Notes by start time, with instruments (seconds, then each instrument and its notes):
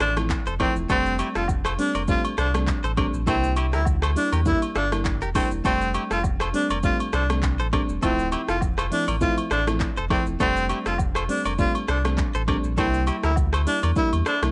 0.00 sub bass A1, tenor saxophone D4, clean electric guitar A4 C5, cross-stick, shaker
0.16 fm electric piano F3 A3 C4 E4, cross-stick, high agogo, shaker
0.30 kick, clap, shaker
0.46 sub bass F1, clean electric guitar A4 C5, shaker
0.60 fm electric piano F3 A3 C4 E4, tenor saxophone C4, clean electric guitar A#4 D5, kick, cross-stick, high agogo
0.76 sub bass E1, shaker
0.89 sub bass F1, fm electric piano G3 A3 C4 D4, tenor saxophone C4, clean electric guitar F4 A4, kick, high agogo, shaker
1.06 shaker
1.19 clean electric guitar E4 G4, high agogo, shaker
1.35 sub bass F1, clean electric guitar F4 A4, tenor saxophone F4, cross-stick, shaker
1.48 kick, low woodblock, shaker
1.65 clean electric guitar A4 C5, cross-stick, high agogo, shaker
1.78 fm electric piano G3 A3 C4 D4, tenor saxophone D4, open hi-hat
1.95 sub bass F1, clean electric guitar A#4 D5, high agogo, shaker
2.08 fm electric piano G3 A3 C4 D4, tenor saxophone F4, kick, shaker
2.25 high agogo, shaker
2.38 sub bass C2, tenor saxophone D4, clean electric guitar A4 C5, cross-stick, shaker
2.54 fm electric piano G3 A3 C4 D4, cross-stick, high agogo, shaker
2.67 kick, clap, shaker
2.84 sub bass A1, clean electric guitar A4 C5, shaker
2.97 fm electric piano G3 A3 C4 D4, clean electric guitar A#4 D5, kick, cross-stick, high agogo
3.14 sub bass A#1, shaker
3.27 sub bass C2, fm electric piano G3 A#3 D4 E4, tenor saxophone C4, clean electric guitar E4 A4, kick, high agogo, shaker
3.44 shaker
3.56 clean electric guitar E4 G4, high agogo, shaker
3.73 sub bass D2, tenor saxophone E4, clean electric guitar G4 A#4, cross-stick, shaker
3.85 kick, low woodblock, shaker
4.02 clean electric guitar A4 C5, cross-stick, high agogo, shaker
4.15 fm electric piano G3 A#3 D4 E4, tenor saxophone D4, open hi-hat, shaker
4.33 sub bass E2, clean electric guitar G4 A#4, high agogo, shaker
4.45 fm electric piano G3 A#3 D4 E4, tenor saxophone E4, kick, shaker
4.62 high agogo, shaker
4.76 sub bass G1, tenor saxophone D4, clean electric guitar F4 A4, cross-stick, shaker
4.91 fm electric piano G3 A#3 D4 E4, cross-stick, high agogo, shaker
5.05 kick, clap, shaker
5.22 sub bass E1, clean electric guitar G4 A#4, shaker
5.35 fm electric piano G3 A#3 D4 E4, tenor saxophone C4, clean electric guitar A4 C5, kick, cross-stick, open hi-hat, high agogo, shaker
5.51 sub bass E1, shaker
5.64 sub bass F1, fm electric piano G3 A3 C4 D4, tenor saxophone C4, clean electric guitar F4 A4, kick, high agogo, shaker
5.81 shaker
5.94 clean electric guitar E4 G4, high agogo, shaker
6.11 sub bass F1, tenor saxophone F4, clean electric guitar F4 A4, cross-stick, shaker
6.23 kick, low woodblock, shaker
6.40 clean electric guitar A4 C5, cross-stick, high agogo, shaker
6.54 fm electric piano G3 A3 C4 D4, tenor saxophone D4, open hi-hat
6.70 sub bass F1, clean electric guitar A#4 D5, high agogo, shaker
6.83 fm electric piano G3 A3 C4 D4, tenor saxophone F4, kick, shaker
7.00 high agogo, shaker
7.13 sub bass C2, tenor saxophone D4, clean electric guitar A4 C5, cross-stick, shaker
7.29 fm electric piano G3 A3 C4 D4, cross-stick, high agogo, shaker
7.43 kick, clap, shaker
7.59 sub bass A1, clean electric guitar A4 C5, shaker
7.73 fm electric piano G3 A3 C4 D4, clean electric guitar A#4 D5, kick, cross-stick, high agogo
7.89 sub bass E1, shaker
8.02 sub bass D1, fm electric piano F3 A3 C4 E4, tenor saxophone C4, clean electric guitar F4 A4, kick, high agogo, shaker
8.19 shaker
8.32 clean electric guitar E4 G4, high agogo, shaker
8.48 sub bass F1, tenor saxophone F4, clean electric guitar F4 A4, cross-stick, shaker
8.61 kick, low woodblock, shaker
8.78 clean electric guitar A4 C5, cross-stick, high agogo, shaker
8.91 fm electric piano F3 A3 C4 E4, tenor saxophone D4, open hi-hat
9.08 sub bass A1, clean electric guitar A#4 D5, high agogo, shaker
9.21 fm electric piano F3 A3 C4 E4, tenor saxophone F4, kick, shaker
9.38 high agogo, shaker
9.51 sub bass A1, tenor saxophone D4, clean electric guitar A4 C5, cross-stick, shaker
9.67 fm electric piano F3 A3 C4 E4, cross-stick, high agogo, shaker
9.80 kick, clap, shaker
9.97 sub bass F1, clean electric guitar A4 C5, shaker
10.10 fm electric piano F3 A3 C4 E4, tenor saxophone C4, clean electric guitar A#4 D5, kick, cross-stick, high agogo
10.26 sub bass E1, shaker
10.40 sub bass F1, fm electric piano G3 A3 C4 D4, tenor saxophone C4, clean electric guitar F4 A4, kick, high agogo, shaker
10.56 shaker
10.69 clean electric guitar E4 G4, high agogo, shaker
10.86 sub bass F1, tenor saxophone F4, clean electric guitar F4 A4, cross-stick, shaker
10.98 kick, low woodblock, shaker
11.15 clean electric guitar A4 C5, cross-stick, high agogo, shaker
11.29 fm electric piano G3 A3 C4 D4, tenor saxophone D4, open hi-hat
11.45 sub bass F1, clean electric guitar A#4 D5, high agogo, shaker
11.58 fm electric piano G3 A3 C4 D4, tenor saxophone F4, kick, shaker
11.75 high agogo, shaker
11.88 sub bass C2, tenor saxophone D4, clean electric guitar A4 C5, cross-stick, shaker
12.05 fm electric piano G3 A3 C4 D4, cross-stick, high agogo, shaker
12.18 kick, clap, shaker
12.34 sub bass A1, clean electric guitar A4 C5, shaker
12.47 fm electric piano G3 A3 C4 D4, clean electric guitar A#4 D5, kick, cross-stick, high agogo
12.64 sub bass A#1, shaker
12.77 sub bass C2, fm electric piano G3 A#3 D4 E4, tenor saxophone C4, clean electric guitar E4 A4, kick, high agogo, shaker
12.94 shaker
13.07 clean electric guitar E4 G4, high agogo, shaker
13.23 sub bass D2, tenor saxophone E4, clean electric guitar G4 A#4, cross-stick, shaker
13.36 kick, low woodblock, shaker
13.53 clean electric guitar A4 C5, cross-stick, high agogo, shaker
13.67 fm electric piano G3 A#3 D4 E4, tenor saxophone D4, open hi-hat, shaker
13.83 sub bass E2, clean electric guitar A#4 D5, high agogo, shaker
13.96 fm electric piano G3 A#3 D4 E4, tenor saxophone E4, kick, shaker
14.13 sub bass E2, high agogo, shaker
14.26 tenor saxophone D4, clean electric guitar A4 C5, cross-stick, shaker
14.42 sub bass C2, fm electric piano G3 A#3 D4 E4, cross-stick, high agogo, shaker